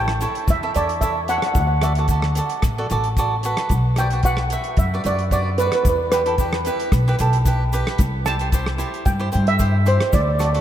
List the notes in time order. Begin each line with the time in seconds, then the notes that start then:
Already playing: A1 E4 A4 C#5 G5
0.08 cross-stick
0.21 E4 A4 C#5, closed hi-hat, shaker
0.35 closed hi-hat
0.48 E2 E5, kick, closed hi-hat, shaker
0.63 E4 A4 E5
0.74 E2 E4 A4 C#5 D5, closed hi-hat, shaker
0.89 closed hi-hat
1.01 E4 A4 C#5 E5, kick, closed hi-hat, shaker
1.28 E4 A4 C#5 F#5, closed hi-hat, shaker
1.38 F#5
1.42 cross-stick, closed hi-hat
1.46 F#5
1.54 D2 F#5, kick, closed hi-hat, shaker
1.60 F#5
1.67 F#5
1.82 F#4 A4 D5 E5, cross-stick, closed hi-hat, shaker
1.95 F#4 A4 D5, closed hi-hat
2.08 F#4 A4 D5, kick, closed hi-hat, shaker
2.22 cross-stick
2.35 F#4 A4 D5, closed hi-hat, shaker
2.49 closed hi-hat
2.62 A1, kick, cross-stick, closed hi-hat, shaker
2.78 F#4 A4 D5
2.90 A1 F#4 A4 D5, closed hi-hat, shaker
3.04 closed hi-hat
3.17 F#4 A4 D5, kick, closed hi-hat, shaker
3.43 F#4 A4 B4, closed hi-hat, shaker
3.57 cross-stick, closed hi-hat
3.69 B1, kick, closed hi-hat, shaker
3.96 F#4 B4 D5 G5, cross-stick, closed hi-hat, shaker
4.10 F#4 B4 D5, closed hi-hat
4.23 F#4 B4 D5 F#5, kick, closed hi-hat, shaker
4.37 cross-stick
4.50 F#4 B4 E5, closed hi-hat, shaker
4.64 closed hi-hat
4.77 F#2 E5, kick, closed hi-hat, shaker
4.94 F#4 B4 D5
5.04 F#2 F#4 B4 D5, closed hi-hat, shaker
5.19 closed hi-hat
5.31 F#4 B4 D5, kick, closed hi-hat, shaker
5.58 F#4 B4 D5, closed hi-hat, shaker
5.67 B4
5.72 B4, cross-stick, closed hi-hat
5.83 E2 B4, kick, closed hi-hat, shaker
5.89 B4
5.96 B4
6.12 E4 G4 B4, cross-stick, closed hi-hat, shaker
6.26 E4 G4 A4, closed hi-hat
6.38 E4 G4 B4, kick, closed hi-hat, shaker
6.53 cross-stick
6.65 E4 G4 B4, closed hi-hat, shaker
6.80 closed hi-hat
6.92 B1, kick, cross-stick, closed hi-hat, shaker
7.08 E4 G4 B4
7.19 B1 E4 G4 A4, closed hi-hat, shaker
7.33 closed hi-hat
7.45 E4 G4 B4, kick, closed hi-hat, shaker
7.73 E4 G4 B4, closed hi-hat, shaker
7.87 cross-stick, closed hi-hat
7.98 C2, kick, closed hi-hat, shaker
8.26 E4 G4 C5 A5, cross-stick, closed hi-hat, shaker
8.39 E4 G4 C5, closed hi-hat
8.52 E4 G4 C5, kick, closed hi-hat, shaker
8.66 cross-stick
8.78 E4 G4 C5, closed hi-hat, shaker
8.94 closed hi-hat
9.05 G2 G5, kick, closed hi-hat, shaker
9.19 E4 G4 C5
9.32 G2 E4 G4 C5, closed hi-hat, shaker
9.47 E5, closed hi-hat
9.59 E4 G4 C5, kick, closed hi-hat, shaker
9.86 E4 G4 C5, closed hi-hat, shaker
10.00 cross-stick, closed hi-hat
10.13 D2 D5, kick, closed hi-hat, shaker
10.22 D5
10.29 D5
10.35 D5, shaker
10.39 F#4 A4 D5, cross-stick, closed hi-hat
10.45 D5
10.53 F#4 A4 D5, closed hi-hat